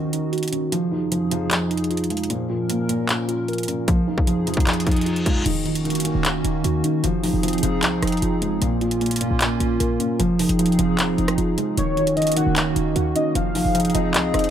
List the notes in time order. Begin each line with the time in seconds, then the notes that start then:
Already playing: D#2 D#3 C#4 D#4 F#4
0.13 D#4, closed hi-hat
0.33 F#4, closed hi-hat
0.38 closed hi-hat
0.43 closed hi-hat
0.48 closed hi-hat
0.52 D#3 C#4, closed hi-hat
0.72 F2 F3 D#4 G#4, closed hi-hat
0.92 F3 D#4
1.12 F3, closed hi-hat
1.31 F3, closed hi-hat
1.51 F3, clap, closed hi-hat
1.71 D#4, closed hi-hat
1.77 closed hi-hat
1.84 closed hi-hat
1.91 F4, closed hi-hat
1.97 closed hi-hat
2.04 closed hi-hat
2.10 F3 G#3, closed hi-hat
2.17 closed hi-hat
2.23 closed hi-hat
2.30 A#2 A#3 C#4 A#4, closed hi-hat
2.50 A#2 F4
2.70 A#2 A#3, closed hi-hat
2.89 A#2 A#3, closed hi-hat
3.09 A#2, clap, closed hi-hat
3.29 F4, closed hi-hat
3.48 A#4, closed hi-hat
3.53 closed hi-hat
3.58 closed hi-hat
3.63 closed hi-hat
3.68 A#2 C#4, closed hi-hat
3.88 F2 F3 D#4 G#4, kick, closed hi-hat
4.08 F3 D#4
4.18 kick
4.27 F3, closed hi-hat
4.47 F3, closed hi-hat
4.54 kick, closed hi-hat
4.60 closed hi-hat
4.67 F3, clap, closed hi-hat, reverse cymbal
4.73 closed hi-hat
4.80 closed hi-hat
4.87 D#4, kick, closed hi-hat
4.91 closed hi-hat
4.96 closed hi-hat
5.01 closed hi-hat
5.06 F4, closed hi-hat
5.16 closed hi-hat
5.26 F3 G#3, kick, closed hi-hat
5.46 D#1 D#3 A#3 C#4 F#4, closed hi-hat, crash
5.66 D#3 D#4, closed hi-hat
5.75 closed hi-hat
5.85 D#3, closed hi-hat
5.90 closed hi-hat
5.95 closed hi-hat
6.00 closed hi-hat
6.05 D#3, closed hi-hat
6.15 D#1
6.25 D#3, clap, closed hi-hat
6.45 D#1 D#4, closed hi-hat
6.64 D#2 F#4, closed hi-hat
6.84 D#3 C#4, closed hi-hat
7.04 F1 F3 C4 D#4 G#4, closed hi-hat
7.23 G#1 F3 D#4, open hi-hat
7.33 F1
7.43 F3, closed hi-hat
7.48 closed hi-hat
7.53 closed hi-hat
7.58 closed hi-hat
7.63 F1 F3, closed hi-hat
7.83 C2 F3, clap, closed hi-hat
8.02 F1 D#4, cross-stick, closed hi-hat
8.07 closed hi-hat
8.12 closed hi-hat
8.17 closed hi-hat
8.22 F1 F4, closed hi-hat
8.42 F3 G#3, closed hi-hat
8.62 A#1 A#2 A#3 C#4 F4, closed hi-hat
8.81 A#2 F4, closed hi-hat
8.91 closed hi-hat
9.01 A#2 A#3, closed hi-hat
9.06 closed hi-hat
9.11 closed hi-hat
9.16 closed hi-hat
9.21 A#2 A#3, closed hi-hat
9.31 A#1
9.41 A#2, clap, closed hi-hat
9.60 A#1 F4, closed hi-hat
9.80 A#1 A#4, closed hi-hat
10.00 A#2 C#4, closed hi-hat
10.19 F1 F3 C4 D#4 G#4, closed hi-hat
10.39 F3 D#4, closed hi-hat, open hi-hat
10.49 F1, closed hi-hat
10.59 F3, closed hi-hat
10.66 closed hi-hat
10.72 closed hi-hat
10.78 F1 F3, closed hi-hat
10.99 F3, clap, closed hi-hat
11.18 F1 D#4, closed hi-hat
11.28 cross-stick, closed hi-hat
11.38 F1 F4, closed hi-hat
11.58 F3 G#3, closed hi-hat
11.77 D#1 D#3 A#3 C#4 F#4 C#5, closed hi-hat
11.97 D#3 D#4, closed hi-hat
12.07 closed hi-hat
12.17 D#3 D#5, closed hi-hat
12.22 closed hi-hat
12.27 closed hi-hat
12.32 closed hi-hat
12.36 D#3 F#5, closed hi-hat
12.47 D#1
12.56 D#3, clap, closed hi-hat
12.76 D#1 D#4, closed hi-hat
12.96 D#2 F#4, closed hi-hat
13.16 D#3 C#4 D#5, closed hi-hat
13.35 F1 F3 C4 D#4 G#4 F5, closed hi-hat
13.55 G#1 F3 D#4, open hi-hat
13.65 F1
13.75 F3, closed hi-hat
13.80 closed hi-hat
13.85 closed hi-hat
13.90 closed hi-hat
13.95 F1 F3 D#5, closed hi-hat
14.14 C2 F3, clap, closed hi-hat
14.34 F1 D#4, cross-stick, closed hi-hat
14.39 closed hi-hat
14.44 closed hi-hat